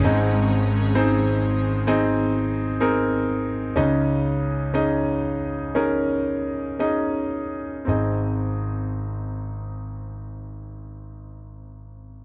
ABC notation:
X:1
M:4/4
L:1/8
Q:1/4=59
K:Ab
V:1 name="Grand piano"
[CEAe]2 [CEAc]2 [CEAe]2 [CEAB]2 | [DEAe]2 [DEAe]2 [DEAB]2 [DEAe]2 | [CEAe]8 |]
V:2 name="Grand piano" clef=bass
[A,,,A,,]8 | [D,,D,]8 | A,,,8 |]